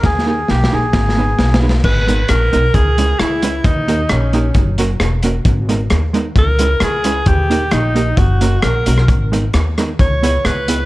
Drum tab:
CC |------------------------------------------------|x-----------------------------------------------|------------------------------------------------|------------------------------------------------|
HH |------------------------------------------------|------x-----x-----x-----x-----x-----x-----x-----|x-----x-----x-----x-----x-----x-----x-----x-----|x-----x-----x-----x-----x-----x-----x-----x-----|
SD |o---o-------o---o-------o---o-------o---o---o---|------------r-----------------------r-----------|------------r-----------------------r-----------|------------r-----------------------r-----------|
BD |o-----------------------o-----------------------|o-----------------------o-----------------------|o-----------------------o-----------------------|o-----------------------o-----------------------|

CC |------------------------------------------------|------------------------------------------------|
HH |x-----x-----x-----x-----x-----x-----x-----x-----|x-----x-----x-----x-----x-----x-----x-----x-----|
SD |------------r-----------------------r--------r--|------------r-----r-----------------r-----------|
BD |o-----------------------o-----------------------|o-----------------------o-----------------------|